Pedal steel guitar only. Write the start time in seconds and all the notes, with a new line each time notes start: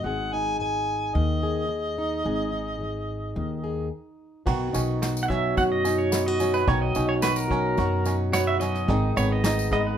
5.23 F#5
5.28 E5
5.58 F#5
5.72 D#5
5.98 C#5
6.26 D#5
6.54 B4
6.68 C#5
6.82 D#5
7.09 C#5
7.23 B4
7.36 A#4
8.33 C#5
8.47 E5
8.60 D#5
9.17 C#5
9.32 D#5
9.73 D#5
9.87 B4